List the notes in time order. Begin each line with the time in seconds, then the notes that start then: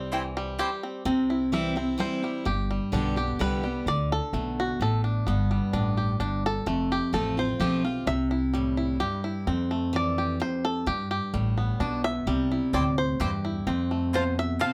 Already playing: C2 G3 C4 D5
0.12 E3 C4 E4 C5 G5
0.37 G3
0.59 C4 E4 G4 C5 G5
0.83 C4
1.05 C2 C3 C4
1.30 E4
1.52 E3 G3 C4 E4 E5
1.76 C4 E4
1.98 E3 G3 C4 E4 C5
2.22 G3 C4 E4
2.45 G1 G2 G4
2.71 G3
2.92 B1 D3 G3 B3 D4 G4
3.16 B3 G4
3.39 C2 D3 G3 B3 G4 B4
3.63 G3 B3 G4
3.86 D2 D3 D5
4.12 A4
4.33 B1 B2 A3
4.60 F#4
4.80 A1 A2 A4
5.04 D4
5.26 G1 G2 B3
5.51 G3
5.73 A1 A2 D4
5.97 G4
6.20 G1 G2 D4
6.46 A4
6.66 F1 F2 A3
6.92 G4
7.13 A1 F3 A3 C4 F4 A4
7.37 C4 F4 C5
7.60 B1 F3 A3 C4 F4 G4
7.85 C4 F4
8.06 C2 C3 E5
8.31 E4
8.53 A2 G3
8.77 E4
9.00 G2 G4
9.24 E4
9.47 F2 C4
9.71 A3
9.93 E3 D5
10.18 G4
10.40 F2 C5
10.65 A4
10.86 G2 G4
11.11 G4
11.34 A1 A2 G3
11.58 B3
11.80 B1 B2 D4
12.04 E5
12.27 C2 C3 G3
12.52 E4
12.73 D2 A2 C4 E4 C5 D5 G5
12.98 C5
13.20 E2 G2 C4 E4 G4 C5 G5
13.45 E4
13.67 F2 C4
13.91 A3
14.13 B2 C4 F4 C5 A5
14.39 E5
14.59 C3 C4 F4 C5 F5 A5